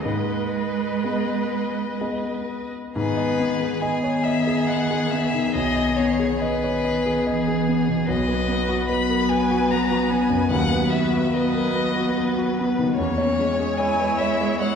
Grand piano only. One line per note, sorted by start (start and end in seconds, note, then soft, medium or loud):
0.05 1.01 G#2 medium
1.04 1.96 B3 soft
1.04 1.96 G#4 soft
1.04 1.97 D#5 soft
2.01 2.91 B3 soft
2.01 2.91 G#4 soft
2.01 2.91 D#5 soft
2.96 5.51 G#2 medium
3.17 3.51 D#5 medium
3.39 3.73 B3 soft
3.60 3.94 G#4 soft
3.82 4.16 D#5 medium
4.04 4.25 C#5 soft
4.25 4.59 D#5 medium
4.47 4.81 G#4 medium
4.69 5.03 D#5 soft
4.91 5.25 G#4 soft
5.12 5.46 B3 soft
5.34 5.55 D#3 soft
5.55 8.03 B1 medium
5.76 6.11 D#5 soft
5.98 6.32 B3 soft
6.20 6.54 G#4 medium
6.42 6.75 D#5 medium
6.64 6.84 C#5 soft
6.84 7.17 D#5 soft
7.06 7.39 G#4 medium
7.27 7.59 D#5 medium
7.48 7.80 G#4 soft
7.67 7.99 B3 soft
7.88 8.08 B2 soft
8.08 10.47 B1 medium
8.28 8.60 B4 soft
8.48 8.80 B3 soft
8.69 9.01 F#4 soft
8.89 9.21 B4 medium
9.09 9.29 A#4 soft
9.29 9.62 B4 soft
9.50 9.82 F#4 soft
9.70 10.02 B4 medium
9.91 10.23 F#4 soft
10.11 10.42 B3 soft
10.30 10.50 F#2 soft
10.51 12.94 D#2 medium
10.72 11.04 B4 medium
10.92 11.25 B3 soft
11.13 11.46 F#4 soft
11.34 11.67 B4 medium
11.54 11.75 A#4 soft
11.76 12.08 B4 soft
11.96 12.29 F#4 soft
12.18 12.50 B4 medium
12.38 12.70 F#4 medium
12.59 12.91 B3 soft
12.79 12.98 D#3 soft
12.98 14.75 E2 medium
13.18 13.50 C#5 medium
13.39 13.71 G#3 soft
13.60 13.92 G#4 soft
13.80 14.12 C#5 medium
14.00 14.20 B4 soft
14.21 14.53 C#5 soft
14.41 14.73 G#4 soft
14.62 14.75 C#5 soft